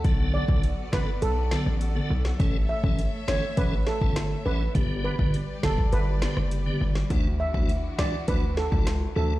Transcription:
<<
  \new Staff \with { instrumentName = "Steel pan" } { \time 4/4 \key d \major \tempo 4 = 102 r8 d''16 r8. b'8 a'8. r4 r16 | r8 e''16 r8. cis''8 b'16 r16 a'16 r8. b'16 r16 | r8 b'16 r8. a'8 b'8. r4 r16 | r8 e''16 r8. d''8 b'16 r16 a'16 r8. a'16 r16 | }
  \new Staff \with { instrumentName = "String section" } { \time 4/4 \key d \major <b fis' a' d''>1 | <a cis'' e''>1 | <g g' b' d''>1 | <e d' e' fis'>1 | }
  \new Staff \with { instrumentName = "Tonewheel organ" } { \time 4/4 \key d \major <d b a'>8. <d b a'>16 r8 <d b a'>16 r8. <d b a'>16 r8 <d b a'>16 r8 | <e cis' a'>16 r8 <e cis' a'>16 r8 <e cis' a'>16 r16 <e cis' a'>16 r8 <e cis' a'>16 r8 <e cis' a'>16 r16 | <d b g'>8. <d b g'>16 r8 <d b g'>16 r8. <d b g'>16 r8 <d b g'>16 r8 | <e d' fis'>16 r8 <e d' fis'>16 r8 <e d' fis'>16 r16 <e d' fis'>16 r8 <e d' fis'>16 r8 <e d' fis'>16 r16 | }
  \new Staff \with { instrumentName = "808-style bass" } { \clef bass \time 4/4 \key d \major b,,8. b,,8 r16 a,,16 r16 b,,8. a,,8. b,,8 | a,,8. a,,8 r16 g,,16 r16 a,,8. g,,8. a,,8 | g,,8. g,,8 r16 fis,,16 r16 g,,8. fis,,8. g,,8 | d,8. d,8 r16 cis,16 r16 d,8. cis,8. d,8 | }
  \new DrumStaff \with { instrumentName = "Drums" } \drummode { \time 4/4 <hh bd>8. bd16 hh8 <bd sn>8 hh8 sn8 hh8. sn16 | <hh bd>8. bd16 hh8 sn8 <hh bd>8 sn16 bd16 <hh sn>4 | <hh bd>8. bd16 hh8 <bd sn>16 bd16 hh8 sn16 ss16 hh8. sn16 | <hh bd>8. bd16 hh8 sn8 <hh bd>8 sn16 bd16 <hh sn>4 | }
>>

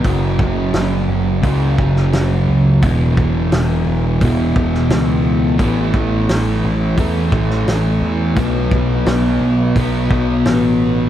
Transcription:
<<
  \new Staff \with { instrumentName = "Distorted electric guitar" } { \clef bass \time 4/4 \key a \major \tempo 4 = 87 <fis, cis fis>2 <fis, cis fis>2 | <e, b, e>2 <e, b, e>2 | <a, e a>2 <a, e a>2 | <b, fis b>2 <b, fis b>2 | }
  \new Staff \with { instrumentName = "Picked electric bass" } { \clef bass \time 4/4 \key a \major fis,,8 fis,,8 fis,,8 fis,,8 cis,8 fis,,8 fis,,8 cis,8 | e,,4 e,,8 e,,8 e,,8 e,,8 cis,4 | a,,8 a,,8 a,,8 a,,8 e,8 a,,8 a,,8 e,8 | b,,4 b,,8 b,,8 b,,8 b,,8 a,,4 | }
  \new DrumStaff \with { instrumentName = "Drums" } \drummode { \time 4/4 <hho bd>8 bd8 <hho sn>4 <hho bd>8 bd16 sn16 <hho sn>4 | <hho bd>8 bd8 <hho sn>4 <hho bd>8 bd16 sn16 <hho sn>4 | <hho bd>8 bd8 <hho sn>4 <hho bd>8 bd16 sn16 <hho sn>4 | <hho bd>8 bd8 <hho sn>4 <hho bd>8 bd8 <hho sn>4 | }
>>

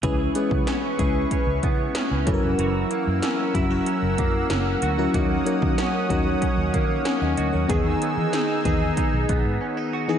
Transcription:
<<
  \new Staff \with { instrumentName = "Analog synth pad" } { \time 4/4 \key cis \dorian \tempo 4 = 94 << { <b' cis'''>2.~ <b' cis'''>8 <ais' e'''>8~ | <ais' e'''>1 | <cis'' dis'''>1 | <dis' e'''>1 | } \\ { e''2.~ e''8 fis''8~ | fis''1~ | fis''1 | gis''1 | } >> }
  \new Staff \with { instrumentName = "FM electric piano" } { \time 4/4 \key cis \dorian << { r1 | r1 | r2. gis''16 <dis'' fis''>16 dis''16 <ais' cis''>16~ | <ais' cis''>16 r2. r8. | } \\ { <gis cis' e' b'>16 r16 <gis cis' e' b'>8. r16 <gis cis' e' b'>4~ <gis cis' e' b'>16 r8. <fis cis' e' a' ais'>8~ | <fis cis' e' a' ais'>4 r8 <fis cis' e' ais'>4~ <fis cis' e' ais'>16 r4 <fis cis' e' ais'>16 | <fis cis' dis' ais'>16 r16 <fis cis' dis' ais'>8. r16 <fis cis' dis' ais'>4~ <fis cis' dis' ais'>16 r4 r16 | <dis b dis' gis'>4 r8 <dis b dis' gis'>4~ <dis b dis' gis'>16 r4 <e b dis' gis'>16 | } >> }
  \new Staff \with { instrumentName = "Clean electric guitar" } { \time 4/4 \key cis \dorian <e gis'>8 b8 cis'8 gis'8 cis'8 b8 cis'8 e8 | <e fis'>8 ais8 cis'8 e'16 fis'16 cis'8 ais8 cis'8 fis'8 | <ais fis'>8 ais8 cis'8 fis'8 cis'8 ais8 cis'8 fis'8 | <dis gis'>8 b8 dis'8 gis'8 dis'8 b8 cis'16 dis'16 fis'16 gis'16 | }
  \new Staff \with { instrumentName = "Fingered electric bass" } { \clef bass \time 4/4 \key cis \dorian cis,8 r16 cis16 r8 cis,8 r16 cis,16 cis8 r16 cis,16 fis,,16 eis,,16 | fis,,8 r16 fis,16 r8 fis,,8 r16 fis,,16 fis,8 fis,,8 d,8 | dis,8 r16 dis16 r8 dis,8 r16 dis,16 dis8 r16 dis,16 d,16 dis,16 | e,8 r16 e16 r8 e,8 r16 b,,16 b,,16 gis,16 r4 | }
  \new DrumStaff \with { instrumentName = "Drums" } \drummode { \time 4/4 <hh bd>8 hh16 bd16 <hh sn>8 <hh bd>8 <hh bd>8 <hh bd>8 <hh sn>8 <hh bd>8 | hh8 hh8 <hh sn>8 <hh bd>8 hh8 <hh bd>8 <hh sn>8 hh8 | <hh bd>8 hh16 bd16 <hh sn>8 <hh bd>8 <hh bd>8 <hh bd>8 <hh sn>8 hh8 | <hh bd>8 hh8 <hh sn>8 <hh bd>8 <hh bd>8 <hh bd>8 r4 | }
>>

